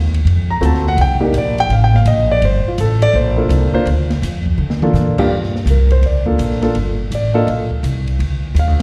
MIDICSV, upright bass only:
0, 0, Header, 1, 3, 480
1, 0, Start_track
1, 0, Key_signature, -2, "minor"
1, 0, Tempo, 360577
1, 1305, Time_signature, 4, 2, 24, 8
1, 11744, End_track
2, 0, Start_track
2, 0, Title_t, "Upright bass"
2, 0, Program_c, 0, 32
2, 0, Note_on_c, 0, 39, 87
2, 324, Note_off_c, 0, 39, 0
2, 332, Note_on_c, 0, 41, 82
2, 804, Note_off_c, 0, 41, 0
2, 811, Note_on_c, 0, 38, 83
2, 1283, Note_off_c, 0, 38, 0
2, 1290, Note_on_c, 0, 36, 84
2, 1756, Note_off_c, 0, 36, 0
2, 1764, Note_on_c, 0, 34, 83
2, 2239, Note_off_c, 0, 34, 0
2, 2249, Note_on_c, 0, 33, 85
2, 2722, Note_off_c, 0, 33, 0
2, 2735, Note_on_c, 0, 34, 94
2, 3205, Note_off_c, 0, 34, 0
2, 3217, Note_on_c, 0, 31, 82
2, 3512, Note_off_c, 0, 31, 0
2, 3702, Note_on_c, 0, 33, 83
2, 4162, Note_off_c, 0, 33, 0
2, 4170, Note_on_c, 0, 34, 88
2, 4642, Note_off_c, 0, 34, 0
2, 4649, Note_on_c, 0, 36, 94
2, 4948, Note_off_c, 0, 36, 0
2, 5132, Note_on_c, 0, 38, 94
2, 5603, Note_off_c, 0, 38, 0
2, 5617, Note_on_c, 0, 41, 84
2, 6086, Note_off_c, 0, 41, 0
2, 6094, Note_on_c, 0, 50, 90
2, 6561, Note_off_c, 0, 50, 0
2, 6569, Note_on_c, 0, 46, 84
2, 7042, Note_off_c, 0, 46, 0
2, 7059, Note_on_c, 0, 43, 69
2, 7521, Note_off_c, 0, 43, 0
2, 7529, Note_on_c, 0, 36, 85
2, 8002, Note_off_c, 0, 36, 0
2, 8008, Note_on_c, 0, 38, 72
2, 8482, Note_off_c, 0, 38, 0
2, 8493, Note_on_c, 0, 34, 79
2, 8965, Note_off_c, 0, 34, 0
2, 8980, Note_on_c, 0, 31, 70
2, 9448, Note_off_c, 0, 31, 0
2, 9463, Note_on_c, 0, 33, 79
2, 9930, Note_off_c, 0, 33, 0
2, 9944, Note_on_c, 0, 34, 80
2, 10411, Note_off_c, 0, 34, 0
2, 10423, Note_on_c, 0, 36, 82
2, 10890, Note_off_c, 0, 36, 0
2, 10904, Note_on_c, 0, 38, 77
2, 11371, Note_off_c, 0, 38, 0
2, 11376, Note_on_c, 0, 39, 81
2, 11546, Note_off_c, 0, 39, 0
2, 11546, Note_on_c, 0, 38, 58
2, 11699, Note_off_c, 0, 38, 0
2, 11744, End_track
3, 0, Start_track
3, 0, Title_t, "Muted upright bass strokes"
3, 3540, Note_on_c, 9, 29, 37
3, 3673, Note_off_c, 9, 29, 0
3, 4962, Note_on_c, 9, 29, 41
3, 5096, Note_off_c, 9, 29, 0
3, 11744, End_track
0, 0, End_of_file